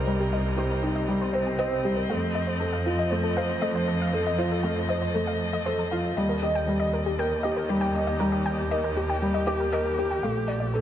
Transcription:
Already playing: C2 C3 G3 C4 D#4 G4 A#4 D#5
0.07 G3 A#4
0.20 G4
0.33 D#5
0.57 G4 C5
0.70 A#4
0.83 D#4 G4
0.96 D#5
1.08 G3
1.21 C5
1.33 C4 C5
1.47 G5
1.59 C4 D#5
1.85 G3 G4
1.96 A#4
2.10 F2 F3 A3 F5
2.35 D#5
2.47 C5
2.60 A4
2.73 F5
2.85 F4 A4
2.99 D#5
3.10 A3 C5
3.24 A4
3.37 C5 F5
3.62 A3 D#5
3.75 C5
3.88 A4
4.02 F5
4.13 A4
4.27 D#5
4.38 F4 C5
4.52 A4
4.63 A3 F5
4.89 C5 D#5
5.02 C5
5.14 A3 A4
5.27 F5
5.53 D#5
5.66 A4 C5
5.79 A4
5.91 F4 F5
6.17 D#2 D#3 G3 D#5
6.29 A#4
6.42 G4 D#5
6.55 G5
6.67 G3
6.80 D#5
6.93 A#4
7.06 G4
7.19 A#4 G5
7.38 G4
7.43 G4 D#5
7.57 A#4
7.69 G3 G4
7.81 G5
7.95 D#5
8.07 D#5
8.20 G3 A#4
8.32 G4
8.46 G5
8.71 A#4 D#5
8.84 A#4
8.96 G4
9.10 G5
9.22 G3
9.34 D#5
9.47 G4
9.60 A#4
9.72 A#4 D#5
9.99 G4
10.11 G5
10.23 A#1 A#2 A3 F5
10.48 D5
10.60 D5
10.74 A4

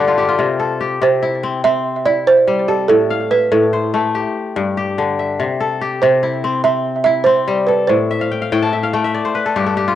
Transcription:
Already playing: G2 D3 A3 G4 A4 B4 C5
0.08 F4
0.18 G4
0.29 F4
0.39 C3
0.60 A4
0.81 G4
1.02 C3 C5
1.22 E4
1.43 C4
1.64 C4 E5
2.06 E4 D5
2.27 C5
2.47 G3
2.68 G4 A4
2.88 A2 A4
3.10 F5
3.31 B4 E5
3.52 A2 A4
3.73 C5
3.94 A3
4.15 G4
4.56 G2
4.77 G4
4.98 D3
5.19 E5
5.40 C3
5.60 A4
5.81 G4
6.02 C3 C5
6.23 E4
6.44 C4
6.64 C4 E5
7.04 E4 E5
7.24 C4 C5
7.48 G3
7.67 A4 B4
7.87 A2 C5
8.11 E5
8.21 F5
8.32 G5
8.42 F5
8.52 A2 G5
8.62 A5
8.73 E5
8.83 F5
8.93 A3 G5
9.04 E5
9.14 D5
9.25 C5
9.35 B4
9.46 A4
9.56 G2 G4
9.66 A4
9.77 G4
9.88 F4

